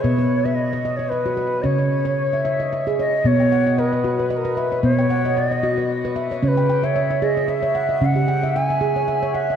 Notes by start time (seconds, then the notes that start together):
Already playing: C#5
0.01 B2 B3 B4 C#5
0.19 B4
0.45 B4 E5
0.55 D#5
0.73 D#5
0.85 D#5
0.97 C#5
1.09 B4 D#5
1.26 F#4
1.37 B4
1.62 C#3 C#4 C#5 D#5
1.79 C#5
2.05 C#5
2.33 E5
2.45 E5
2.60 D#5
2.73 E5
2.87 G#4
2.99 C#5 D#5
3.24 B2 B3 C#5
3.40 G5
3.52 F#5
3.66 D#5
3.78 B4 D#5
3.93 D#5
4.04 F#4
4.19 B4
4.30 B4 D#5
4.37 A#4
4.45 B4
4.57 B4 E5
4.72 C#5
4.83 B2 B3 C#5
4.99 G5
5.10 F#5
5.25 D#5
5.37 D5 D#5
5.50 D#5
5.63 F#4
5.78 B4
6.05 B4
6.16 E5
6.31 C#5
6.43 C#3 C#4 C#5
6.48 B4
6.57 G5
6.69 G5
6.83 C#5 E5
6.96 E5
7.10 E5
7.22 G#4 D#5
7.37 C#5
7.48 E5
7.63 C#5
7.75 F#5
7.89 D#5
8.01 C#3 C#4 F#5
8.16 G4
8.28 G5
8.43 E5
8.56 E5 G#5
8.70 E5
8.81 G#4
8.96 C#5
9.08 E5
9.23 C#5
9.35 E5 F#5
9.50 D#5